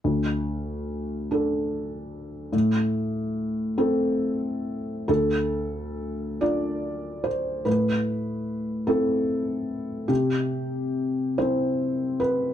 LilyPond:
\new Staff \with { instrumentName = "Felt piano" } { \time 6/8 \key d \dorian \tempo 4. = 48 << { r2. | r2. | a'4. d''4 c''8 | b'4. a'4. |
g'4. c''4 b'8 | } \\ { d,4. <d' a'>4. | a,4. <c' a'>4. | d,4. <d' f'>4. | a,4. <c' e'>4. |
c4. <c' e'>4. | } >> }